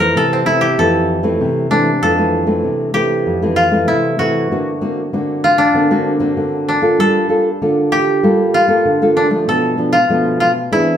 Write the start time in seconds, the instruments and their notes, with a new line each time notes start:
Already playing: nylon-string guitar F2, koto C5 D5 F5
0.00 nylon-string guitar E3 A3 C4, koto A#4
0.16 nylon-string guitar C3, koto A4
0.33 koto C4
0.46 nylon-string guitar E3 A3 C4, koto E4
0.61 koto G4
0.79 nylon-string guitar F2 E3 A3 C4, koto A4
1.23 nylon-string guitar E3 A3 C4
1.41 nylon-string guitar C3
1.70 nylon-string guitar E3 A3 C4, koto D4
2.02 nylon-string guitar F2 E3 A3 C4, koto A4
2.18 nylon-string guitar E3 A3 C4
2.47 nylon-string guitar E3 A3 C4
2.64 nylon-string guitar C3
2.94 nylon-string guitar E3 A3 C4, koto G4
3.26 nylon-string guitar F2
3.42 nylon-string guitar E3 A3 C4
3.56 koto F4
3.71 nylon-string guitar E3 A3 C4
3.88 nylon-string guitar C3, koto E4
4.19 nylon-string guitar E3 A3 C4, koto F#4
4.51 nylon-string guitar D3 A#3 C4 F#4
4.81 nylon-string guitar A#3 C4 F#4
5.13 nylon-string guitar D3 A#3 C4 F#4
5.44 koto F4
5.58 koto D4
5.74 nylon-string guitar D3 A#3 C4 F#4
5.91 nylon-string guitar A#3 C4 F#4
6.19 nylon-string guitar A#3 C4 F#4
6.37 nylon-string guitar D3
6.68 koto D4
6.82 nylon-string guitar A#3 F4 A4
6.99 nylon-string guitar G3, koto A4
7.29 nylon-string guitar A#3 F4 A4
7.61 nylon-string guitar D3 A#3 F4 A4
7.92 koto G4
8.23 nylon-string guitar G3 A#3 F4 A4
8.54 koto F4
8.68 nylon-string guitar A#3 F4 A4
8.85 nylon-string guitar D3
9.02 nylon-string guitar A#3 F4 A4
9.17 koto D4
9.30 nylon-string guitar F3 A3 D4
9.48 nylon-string guitar B2, koto A4
9.78 nylon-string guitar F3 A3 D4
9.93 koto F4
10.09 nylon-string guitar B2 F3 A3 D4
10.40 koto F4
10.72 nylon-string guitar E3 C4 D4 G#4, koto E4